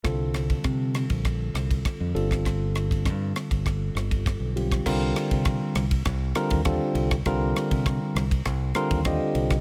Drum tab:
CC |----------------|----------------|x---------------|----------------|
RD |x-xxx-xxx-xxx-xx|x-xxx-xxx-xxx-xx|--xxx-xxx-xxx-xx|x-xxx-xxx-xxx-xx|
SD |r-r-r-r-r-r-r--r|r-r-r-r-r-r-r--r|r-r-r-r-r-r-r--r|r-r-r-r-r-r-r--r|
BD |o--oo--oo--oo--o|o--oo--oo--oo--o|o--oo--oo--oo--o|o--oo--oo--oo--o|